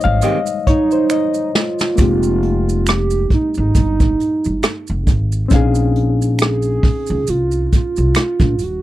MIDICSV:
0, 0, Header, 1, 7, 480
1, 0, Start_track
1, 0, Key_signature, -4, "minor"
1, 0, Tempo, 882353
1, 1079, Time_signature, 4, 2, 24, 8
1, 4799, End_track
2, 0, Start_track
2, 0, Title_t, "Reed electric piano"
2, 0, Program_c, 0, 4
2, 0, Control_c, 0, 64, 127
2, 0, Note_on_c, 0, 55, 47
2, 0, Note_on_c, 0, 56, 39
2, 0, Note_on_c, 0, 63, 47
2, 0, Note_on_c, 0, 72, 77
2, 0, Note_on_c, 0, 73, 87
2, 0, Note_on_c, 0, 75, 89
2, 0, Note_on_c, 0, 77, 85
2, 0, Note_on_c, 0, 79, 91
2, 21, Note_off_c, 0, 77, 0
2, 21, Note_on_c, 0, 77, 103
2, 96, Note_off_c, 0, 55, 0
2, 97, Note_off_c, 0, 56, 0
2, 98, Note_off_c, 0, 63, 0
2, 124, Note_off_c, 0, 77, 0
2, 125, Note_off_c, 0, 75, 0
2, 125, Note_on_c, 0, 75, 76
2, 365, Note_off_c, 0, 73, 0
2, 365, Note_on_c, 0, 73, 91
2, 369, Note_off_c, 0, 75, 0
2, 503, Note_off_c, 0, 72, 0
2, 503, Note_on_c, 0, 72, 71
2, 504, Note_off_c, 0, 73, 0
2, 604, Note_on_c, 0, 75, 82
2, 605, Note_off_c, 0, 72, 0
2, 1059, Note_off_c, 0, 75, 0
2, 1065, Note_on_c, 0, 58, 59
2, 1073, Note_on_c, 0, 60, 57
2, 1082, Note_on_c, 0, 63, 55
2, 1086, Control_c, 0, 64, 0
2, 1089, Note_off_c, 0, 79, 0
2, 1092, Note_on_c, 0, 67, 56
2, 1102, Note_on_c, 0, 56, 66
2, 1193, Control_c, 0, 64, 127
2, 2970, Note_off_c, 0, 58, 0
2, 2974, Note_off_c, 0, 60, 0
2, 2979, Note_off_c, 0, 63, 0
2, 2983, Note_on_c, 0, 60, 74
2, 2984, Note_off_c, 0, 67, 0
2, 2988, Note_off_c, 0, 56, 0
2, 2993, Note_on_c, 0, 61, 70
2, 3002, Note_on_c, 0, 63, 65
2, 3006, Control_c, 0, 64, 0
2, 3013, Note_on_c, 0, 77, 64
2, 3023, Note_on_c, 0, 68, 88
2, 3097, Control_c, 0, 64, 127
2, 4799, Note_off_c, 0, 60, 0
2, 4799, Note_off_c, 0, 61, 0
2, 4799, Note_off_c, 0, 63, 0
2, 4799, Note_off_c, 0, 68, 0
2, 4799, Note_off_c, 0, 77, 0
2, 4799, End_track
3, 0, Start_track
3, 0, Title_t, "Soft synth lead"
3, 0, Program_c, 1, 80
3, 372, Note_on_c, 1, 63, 96
3, 824, Note_off_c, 1, 63, 0
3, 855, Note_on_c, 1, 65, 108
3, 1578, Note_on_c, 1, 67, 109
3, 1586, Note_off_c, 1, 65, 0
3, 1808, Note_off_c, 1, 67, 0
3, 1816, Note_on_c, 1, 63, 85
3, 1936, Note_off_c, 1, 63, 0
3, 1953, Note_on_c, 1, 63, 92
3, 2745, Note_off_c, 1, 63, 0
3, 3489, Note_on_c, 1, 68, 107
3, 3966, Note_on_c, 1, 65, 101
3, 3974, Note_off_c, 1, 68, 0
3, 4202, Note_off_c, 1, 65, 0
3, 4217, Note_on_c, 1, 65, 93
3, 4695, Note_on_c, 1, 66, 96
3, 4703, Note_off_c, 1, 65, 0
3, 4799, Note_off_c, 1, 66, 0
3, 4799, End_track
4, 0, Start_track
4, 0, Title_t, "Hollow-body jazz guitar"
4, 0, Program_c, 2, 26
4, 121, Note_on_c, 2, 51, 81
4, 124, Note_on_c, 2, 56, 87
4, 128, Note_on_c, 2, 60, 89
4, 131, Note_on_c, 2, 67, 90
4, 202, Note_off_c, 2, 51, 0
4, 204, Note_off_c, 2, 56, 0
4, 206, Note_off_c, 2, 60, 0
4, 207, Note_off_c, 2, 67, 0
4, 4799, End_track
5, 0, Start_track
5, 0, Title_t, "Upright bass"
5, 0, Program_c, 3, 32
5, 26, Note_on_c, 3, 32, 97
5, 108, Note_off_c, 3, 32, 0
5, 1081, Note_on_c, 3, 29, 102
5, 1778, Note_off_c, 3, 29, 0
5, 1945, Note_on_c, 3, 32, 75
5, 2027, Note_off_c, 3, 32, 0
5, 2045, Note_on_c, 3, 31, 82
5, 2244, Note_off_c, 3, 31, 0
5, 2425, Note_on_c, 3, 31, 69
5, 2507, Note_off_c, 3, 31, 0
5, 2664, Note_on_c, 3, 29, 76
5, 2762, Note_off_c, 3, 29, 0
5, 2762, Note_on_c, 3, 32, 81
5, 2963, Note_off_c, 3, 32, 0
5, 3002, Note_on_c, 3, 34, 93
5, 3698, Note_off_c, 3, 34, 0
5, 3863, Note_on_c, 3, 37, 80
5, 3946, Note_off_c, 3, 37, 0
5, 3962, Note_on_c, 3, 36, 68
5, 4163, Note_off_c, 3, 36, 0
5, 4340, Note_on_c, 3, 36, 80
5, 4425, Note_off_c, 3, 36, 0
5, 4572, Note_on_c, 3, 34, 87
5, 4682, Note_off_c, 3, 34, 0
5, 4682, Note_on_c, 3, 27, 82
5, 4799, Note_off_c, 3, 27, 0
5, 4799, End_track
6, 0, Start_track
6, 0, Title_t, "Muted upright bass strokes"
6, 1801, Note_on_c, 9, 29, 38
6, 1855, Note_off_c, 9, 29, 0
6, 3721, Note_on_c, 9, 29, 41
6, 3775, Note_off_c, 9, 29, 0
6, 4799, End_track
7, 0, Start_track
7, 0, Title_t, "Drums"
7, 4, Note_on_c, 9, 82, 41
7, 59, Note_off_c, 9, 82, 0
7, 114, Note_on_c, 9, 42, 79
7, 118, Note_on_c, 9, 82, 60
7, 169, Note_off_c, 9, 42, 0
7, 173, Note_off_c, 9, 82, 0
7, 252, Note_on_c, 9, 82, 49
7, 306, Note_off_c, 9, 82, 0
7, 363, Note_on_c, 9, 42, 59
7, 364, Note_on_c, 9, 36, 68
7, 418, Note_off_c, 9, 36, 0
7, 418, Note_off_c, 9, 42, 0
7, 496, Note_on_c, 9, 82, 37
7, 550, Note_off_c, 9, 82, 0
7, 597, Note_on_c, 9, 26, 64
7, 597, Note_on_c, 9, 82, 59
7, 652, Note_off_c, 9, 26, 0
7, 652, Note_off_c, 9, 82, 0
7, 730, Note_on_c, 9, 82, 42
7, 784, Note_off_c, 9, 82, 0
7, 844, Note_on_c, 9, 38, 81
7, 898, Note_off_c, 9, 38, 0
7, 974, Note_on_c, 9, 82, 39
7, 983, Note_on_c, 9, 38, 82
7, 1028, Note_off_c, 9, 82, 0
7, 1037, Note_off_c, 9, 38, 0
7, 1075, Note_on_c, 9, 82, 56
7, 1078, Note_on_c, 9, 36, 89
7, 1078, Note_on_c, 9, 42, 78
7, 1129, Note_off_c, 9, 82, 0
7, 1132, Note_off_c, 9, 36, 0
7, 1133, Note_off_c, 9, 42, 0
7, 1212, Note_on_c, 9, 82, 41
7, 1267, Note_off_c, 9, 82, 0
7, 1319, Note_on_c, 9, 42, 54
7, 1373, Note_off_c, 9, 42, 0
7, 1464, Note_on_c, 9, 82, 45
7, 1519, Note_off_c, 9, 82, 0
7, 1559, Note_on_c, 9, 26, 62
7, 1559, Note_on_c, 9, 82, 65
7, 1560, Note_on_c, 9, 42, 61
7, 1571, Note_on_c, 9, 37, 104
7, 1614, Note_off_c, 9, 26, 0
7, 1614, Note_off_c, 9, 42, 0
7, 1614, Note_off_c, 9, 82, 0
7, 1625, Note_off_c, 9, 37, 0
7, 1689, Note_on_c, 9, 82, 42
7, 1743, Note_off_c, 9, 82, 0
7, 1797, Note_on_c, 9, 36, 73
7, 1798, Note_on_c, 9, 42, 51
7, 1852, Note_off_c, 9, 36, 0
7, 1852, Note_off_c, 9, 42, 0
7, 1928, Note_on_c, 9, 82, 35
7, 1982, Note_off_c, 9, 82, 0
7, 2036, Note_on_c, 9, 42, 71
7, 2040, Note_on_c, 9, 36, 81
7, 2041, Note_on_c, 9, 82, 54
7, 2091, Note_off_c, 9, 42, 0
7, 2094, Note_off_c, 9, 36, 0
7, 2095, Note_off_c, 9, 82, 0
7, 2177, Note_on_c, 9, 36, 80
7, 2177, Note_on_c, 9, 82, 39
7, 2231, Note_off_c, 9, 36, 0
7, 2232, Note_off_c, 9, 82, 0
7, 2284, Note_on_c, 9, 42, 55
7, 2290, Note_on_c, 9, 82, 37
7, 2338, Note_off_c, 9, 42, 0
7, 2344, Note_off_c, 9, 82, 0
7, 2418, Note_on_c, 9, 82, 34
7, 2472, Note_off_c, 9, 82, 0
7, 2517, Note_on_c, 9, 42, 68
7, 2520, Note_on_c, 9, 26, 54
7, 2520, Note_on_c, 9, 82, 58
7, 2522, Note_on_c, 9, 37, 106
7, 2571, Note_off_c, 9, 42, 0
7, 2574, Note_off_c, 9, 26, 0
7, 2574, Note_off_c, 9, 82, 0
7, 2577, Note_off_c, 9, 37, 0
7, 2650, Note_on_c, 9, 82, 37
7, 2705, Note_off_c, 9, 82, 0
7, 2758, Note_on_c, 9, 36, 83
7, 2760, Note_on_c, 9, 82, 34
7, 2762, Note_on_c, 9, 42, 62
7, 2812, Note_off_c, 9, 36, 0
7, 2814, Note_off_c, 9, 82, 0
7, 2816, Note_off_c, 9, 42, 0
7, 2895, Note_on_c, 9, 82, 38
7, 2949, Note_off_c, 9, 82, 0
7, 2993, Note_on_c, 9, 82, 58
7, 2998, Note_on_c, 9, 36, 99
7, 2999, Note_on_c, 9, 42, 83
7, 3048, Note_off_c, 9, 82, 0
7, 3053, Note_off_c, 9, 36, 0
7, 3053, Note_off_c, 9, 42, 0
7, 3127, Note_on_c, 9, 82, 44
7, 3182, Note_off_c, 9, 82, 0
7, 3240, Note_on_c, 9, 42, 55
7, 3295, Note_off_c, 9, 42, 0
7, 3382, Note_on_c, 9, 82, 48
7, 3437, Note_off_c, 9, 82, 0
7, 3475, Note_on_c, 9, 26, 67
7, 3475, Note_on_c, 9, 82, 68
7, 3481, Note_on_c, 9, 42, 55
7, 3492, Note_on_c, 9, 37, 96
7, 3530, Note_off_c, 9, 26, 0
7, 3530, Note_off_c, 9, 82, 0
7, 3535, Note_off_c, 9, 42, 0
7, 3547, Note_off_c, 9, 37, 0
7, 3603, Note_on_c, 9, 82, 36
7, 3657, Note_off_c, 9, 82, 0
7, 3716, Note_on_c, 9, 36, 88
7, 3718, Note_on_c, 9, 46, 45
7, 3771, Note_off_c, 9, 36, 0
7, 3773, Note_off_c, 9, 46, 0
7, 3844, Note_on_c, 9, 82, 36
7, 3898, Note_off_c, 9, 82, 0
7, 3956, Note_on_c, 9, 82, 59
7, 3957, Note_on_c, 9, 42, 66
7, 4010, Note_off_c, 9, 82, 0
7, 4011, Note_off_c, 9, 42, 0
7, 4088, Note_on_c, 9, 82, 44
7, 4142, Note_off_c, 9, 82, 0
7, 4201, Note_on_c, 9, 42, 56
7, 4203, Note_on_c, 9, 36, 73
7, 4204, Note_on_c, 9, 82, 39
7, 4255, Note_off_c, 9, 42, 0
7, 4257, Note_off_c, 9, 36, 0
7, 4258, Note_off_c, 9, 82, 0
7, 4333, Note_on_c, 9, 82, 36
7, 4387, Note_off_c, 9, 82, 0
7, 4433, Note_on_c, 9, 26, 65
7, 4433, Note_on_c, 9, 82, 55
7, 4434, Note_on_c, 9, 42, 81
7, 4439, Note_on_c, 9, 37, 101
7, 4487, Note_off_c, 9, 26, 0
7, 4487, Note_off_c, 9, 82, 0
7, 4488, Note_off_c, 9, 42, 0
7, 4494, Note_off_c, 9, 37, 0
7, 4568, Note_on_c, 9, 36, 100
7, 4569, Note_on_c, 9, 82, 36
7, 4622, Note_off_c, 9, 36, 0
7, 4623, Note_off_c, 9, 82, 0
7, 4673, Note_on_c, 9, 82, 38
7, 4683, Note_on_c, 9, 42, 66
7, 4727, Note_off_c, 9, 82, 0
7, 4737, Note_off_c, 9, 42, 0
7, 4799, End_track
0, 0, End_of_file